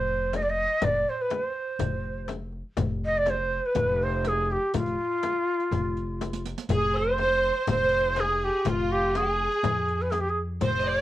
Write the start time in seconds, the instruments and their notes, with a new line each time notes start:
Already playing: upright bass F1, ney C5
0.09 darbuka ka
0.33 ney D#5, riq, darbuka tek, frame drum
0.42 ney D5
0.49 ney D#5
0.58 darbuka ka
0.81 upright bass F1, ney D5, riq, frame drum, darbuka dum
0.95 darbuka ka
1.09 ney C5
1.21 ney B4
1.30 ney C5, riq, darbuka tek, frame drum
1.68 darbuka ka
1.79 upright bass F1, riq, darbuka dum, frame drum
2.04 darbuka ka
2.28 riq, darbuka tek, frame drum
2.53 darbuka ka
2.77 upright bass F1, riq, darbuka dum, frame drum
2.89 darbuka ka
3.05 ney D#5
3.17 ney D5
3.26 ney C5, riq, darbuka tek, frame drum
3.63 ney B4, darbuka ka
3.75 upright bass F1, riq, darbuka dum, frame drum
4.00 ney C5, darbuka ka
4.24 ney G#4, riq, darbuka tek, frame drum
4.50 ney G4, darbuka ka
4.74 upright bass F1, ney F4, riq, frame drum, darbuka dum
4.86 riq, darbuka ka
4.99 darbuka ka
5.23 riq, darbuka tek, frame drum
5.60 riq, darbuka ka
5.71 upright bass F1, riq, darbuka dum, frame drum
5.97 riq, darbuka ka
6.21 riq, darbuka tek, frame drum
6.33 riq
6.46 riq, darbuka ka
6.58 riq
6.69 upright bass F1, violin section G#4, ney G#4, riq, darbuka dum, frame drum
6.94 violin section C5, ney C5, darbuka ka
7.18 riq, darbuka tek, frame drum
7.55 riq, darbuka ka
7.67 upright bass F1, violin section C5, ney C5, riq, darbuka dum, frame drum
7.92 riq, darbuka ka
8.16 violin section G#4, ney G#4, riq, darbuka tek, frame drum
8.44 ney G4
8.65 upright bass F1, violin section F4, ney F4, riq, frame drum, darbuka dum
8.90 ney G4, darbuka ka
9.14 violin section G#4, ney G#4, riq, darbuka tek, frame drum
9.51 riq, darbuka ka
9.63 upright bass F2, riq, frame drum, darbuka dum
9.88 riq, darbuka ka
10.01 ney B4
10.11 ney G#4, riq, darbuka tek, frame drum
10.20 ney G4
10.29 ney G#4
10.61 upright bass F1, violin section C5, ney C5, riq, frame drum, darbuka dum
10.79 violin section D#5
10.86 violin section D5, ney D5, darbuka ka